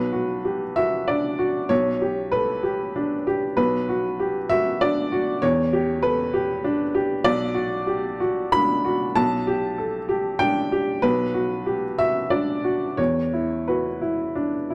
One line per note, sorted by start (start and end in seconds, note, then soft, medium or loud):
0.00 1.67 B1 soft
0.00 0.75 B4 medium
0.12 0.63 F#4 soft
0.45 0.76 G4 soft
0.76 1.27 F#4 soft
0.76 1.08 E5 medium
1.08 1.58 D4 soft
1.08 1.70 D5 medium
1.39 1.70 F#4 soft
1.69 3.53 B1 medium
1.69 2.32 C#5 medium
2.01 2.51 G4 soft
2.32 2.63 A4 soft
2.32 3.26 B4 medium
2.63 3.13 G4 soft
2.96 3.46 D4 soft
3.27 3.58 G4 soft
3.57 5.38 B1 medium
3.57 4.49 B4 medium
3.89 4.38 F#4 soft
4.20 4.50 G4 soft
4.49 4.99 F#4 soft
4.49 4.80 E5 medium
4.81 5.31 D4 soft
4.81 5.43 D5 medium
5.12 5.43 F#4 medium
5.42 7.22 E2 medium
5.42 6.03 C#5 medium
5.73 6.22 G4 soft
6.03 6.34 A4 soft
6.03 6.95 B4 medium
6.34 6.83 G4 soft
6.64 7.13 D4 soft
6.95 7.25 G4 medium
7.24 9.13 B1 medium
7.24 8.53 D5 medium
7.54 8.06 F#4 soft
7.87 8.20 G4 soft
8.20 8.73 F#4 soft
8.52 9.04 D4 soft
8.52 9.16 B5 medium
8.85 9.16 F#4 soft
9.16 10.99 B1 medium
9.16 10.39 A5 medium
9.47 9.96 G4 soft
9.78 10.09 A4 soft
10.09 10.59 G4 soft
10.39 10.90 D4 soft
10.39 11.02 G5 medium
10.72 11.03 G4 soft
11.02 12.94 B1 medium
11.02 11.97 B4 medium
11.34 11.84 F#4 soft
11.66 11.98 G4 soft
11.99 12.51 F#4 soft
11.99 12.31 E5 medium
12.30 12.85 D4 soft
12.30 12.98 D5 medium
12.64 12.98 F#4 soft
12.97 14.74 E2 soft
12.97 13.66 C#5 medium
13.33 13.87 E4 soft
13.68 14.01 F#4 soft
13.68 14.69 B4 soft
14.01 14.55 E4 soft
14.35 14.74 D4 soft
14.70 14.74 E4 soft